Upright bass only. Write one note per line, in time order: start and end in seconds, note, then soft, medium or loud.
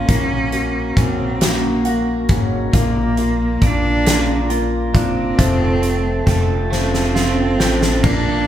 0.09 0.93 A#1 loud
0.97 2.25 A#1 medium
2.29 2.71 G#1 medium
2.74 3.58 A#1 loud
3.62 4.95 A#1 medium
4.95 5.36 G1 medium
5.39 6.23 F1 medium
6.27 7.60 F1 medium
7.60 8.01 A1 medium
8.04 8.47 A#1 loud